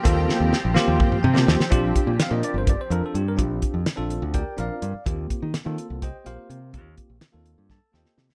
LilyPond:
<<
  \new Staff \with { instrumentName = "Tine electric piano" } { \time 7/8 \key bes \major \tempo 4 = 126 << { r2 r8 g''8 c''8 | r4 f''16 ees''16 d''16 c''16 d''16 c''16 bes'16 a'16 g'16 bes'16 | r2 <g' bes' d'' g''>8 <d'' f''>4 | r2 <g' c'' ees'' g''>8 <bes' c'' f''>4 |
r2 <a' a''>8 <g' c'' ees'' g''>8. r16 | } \\ { <bes c' f' a'>4 r8 <bes c' f' g'>8. r8 <bes c' f' g'>8 r16 | <c' d' f' g'>8. r8 <c' d' f' bes'>8. r8 <c' d' f' a'>8. r16 | <c' d' f' g'>8. r8 <c' d' f' a'>8. r8 <c' d' f' bes'>8. r16 | <bes c' f' g'>8. r8 <bes c' f' a'>8. r8 <bes c' f' g'>8. r16 |
<bes c' f' g'>8. r8 <bes c' f' a'>8. r8 <bes c' f' a'>8. r16 | } >> }
  \new Staff \with { instrumentName = "Ambient pad" } { \time 7/8 \key bes \major <f c' g'>2.~ <f c' g'>8 | r2. r8 | r2. r8 | r2. r8 |
r2. r8 | }
  \new Staff \with { instrumentName = "Fingered electric bass" } { \clef bass \time 7/8 \key bes \major ees,8 r16 ees,16 r16 bes,,16 r16 ees,16 r8 c8 ees,16 r16 | bes,,8 r16 bes,16 r16 bes,16 r16 g,,8 r16 f,16 r16 g,8 | bes,,8 r16 f,16 r16 bes,,8 d,8 r16 bes,,16 r16 g,16 r16 | ees,8 r16 ees16 r16 ees16 r16 c,8 r16 bes,,16 r16 c8 |
ees,8 r16 bes,,16 r16 ees,8 g,8 r16 ees,16 r16 c16 r16 | }
  \new DrumStaff \with { instrumentName = "Drums" } \drummode { \time 7/8 <hh bd>8 sn8 sn8 sn8 <bd toml>16 toml16 toml16 sn16 sn16 sn16 | <hh bd>8 <hh bd>8 <hh sn>8 hh8 <hh bd>8 hh8 hh8 | <hh bd>8 <hh bd>8 <hh sn>8 hh8 <hh bd>8 hh8 hh8 | <hh bd>8 <hh bd>8 <hh sn>8 hh8 <hh bd>8 hh8 hh8 |
<hh bd>8 <hh bd>8 <hh sn>8 hh8 <bd sn>8 sn16 sn16 sn16 sn16 | }
>>